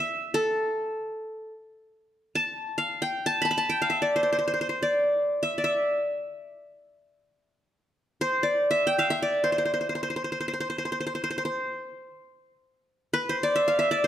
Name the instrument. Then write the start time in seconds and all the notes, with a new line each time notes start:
qanun
0.00 E5
0.34 A4
2.35 A5
2.78 F5
3.02 G5
3.26 A5
3.42 A5 B5
3.51 B5
3.58 A5
3.69 G5
3.82 F5
3.90 E5
4.02 D5
4.16 C5
4.23 C5
4.33 C5
4.39 C5
4.48 C5
4.54 C5
4.61 C5
4.69 C5
4.83 D5
5.43 E5
5.58 D5
5.64 E5
8.21 C5
8.43 D5
8.71 E5
8.87 G5
8.98 E5 F5
9.10 E5
9.22 D5
9.44 C5
9.52 C5
9.58 C5
9.65 C5
9.74 C5
9.81 C5
9.89 C5
9.95 C5
10.03 C5
10.10 C5
10.16 C5
10.24 C5
10.32 C5
10.40 C5
10.48 C5
10.54 C5
10.60 C5
10.70 C5
10.78 C5
10.85 C5
10.92 C5
11.00 C5
11.07 C5
11.15 C5
11.24 C5
11.31 C5
11.38 C5
11.45 C5
13.13 B4
13.29 C5
13.43 D5
13.56 E5
13.68 F5
13.79 E5
13.91 D5
14.04 C5